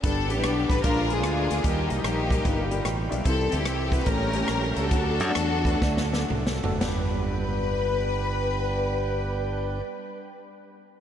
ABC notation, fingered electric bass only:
X:1
M:4/4
L:1/8
Q:"Swing" 1/4=138
K:G
V:1 name="Fingered electric bass" clef=bass
G,,, A,,, B,,, A,,, _B,,,2 D,, D,, | _E,, C,, _B,,,2 G,,,2 A,,, =B,,, | C,, D,, C,,2 A,,,2 _B,,, ^C,, | D,, F,, E,,2 D,,2 C,, F,,, |
G,,,8- | G,,,8 |]